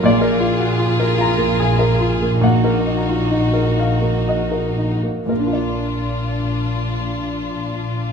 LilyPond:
<<
  \new Staff \with { instrumentName = "Grand piano" } { \time 3/4 \key ees \dorian \tempo 4 = 63 << { d''4. bes''8 aes''4 | ges''4. f''8 ees''4 | <bes, bes d' f' bes' d''>2. | } \\ { bes,16 bes'16 f'16 ges'16 f'16 bes'16 f'16 bes16 aes'16 bes'16 f'16 bes16 | bes,16 bes'16 ees'16 f'16 ees'16 bes'16 ees'16 bes16 ges'16 bes'16 ees'16 bes16 | r2. | } >> }
  \new Staff \with { instrumentName = "Violin section" } { \time 3/4 \key ees \dorian <f' aes'>2. | <ees' ges'>2~ <ees' ges'>8. r16 | <d' f'>2. | }
  \new Staff \with { instrumentName = "Double bass section" } { \clef bass \time 3/4 \key ees \dorian bes,,2.~ | bes,,2~ bes,,8. r16 | bes,,2. | }
>>